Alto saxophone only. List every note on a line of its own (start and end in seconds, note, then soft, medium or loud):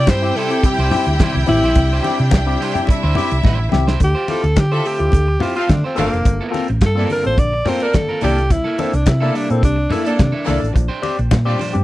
0.00 0.10 D5 loud
0.09 0.38 C5 loud
0.36 0.67 A4 loud
0.65 0.93 G4 medium
1.49 2.01 E4 loud
4.04 4.32 G4 loud
4.30 4.61 A4 loud
4.59 4.75 G4 loud
4.73 4.88 A4 medium
4.87 5.43 G4 loud
5.42 5.56 F4 medium
5.56 5.73 F4 medium
5.71 5.85 D4 medium
5.86 5.98 C4 medium
5.99 6.51 A#3 medium
6.85 7.10 A4 loud
7.12 7.25 A#4 loud
7.26 7.40 C5 loud
7.39 7.70 D5 loud
7.68 7.84 C5 loud
7.83 7.98 A#4 medium
7.96 8.23 A4 loud
8.24 8.54 G4 loud
8.52 8.82 E4 loud
8.81 8.97 C4 medium
8.95 9.09 D4 medium
9.08 9.37 E4 medium
9.36 9.52 D4 medium
9.51 9.63 C4 medium
9.64 9.94 D4 medium
9.93 10.09 E4 medium
10.07 10.91 D4 medium